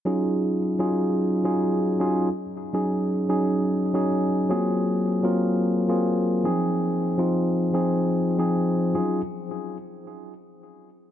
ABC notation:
X:1
M:4/4
L:1/16
Q:"Swing 16ths" 1/4=108
K:Ebdor
V:1 name="Tine electric piano"
[G,DEFA]4- [G,DEFA] [G,DEFA]4- [G,DEFA] [G,DEFA]4 [G,DEFA]2 | z3 [G,DEA]4 [G,DEA]4- [G,DEA] [G,DEA]4 | [G,B,CFA]4- [G,B,CFA] [G,B,CFB]4- [G,B,CFB] [G,B,CFA]4 [F,CEA]2- | [F,CEA]3 [F,CEF]4 [F,CEA]4- [F,CEA] [F,CEA]4 |
[G,DEFA]2 z12 z2 |]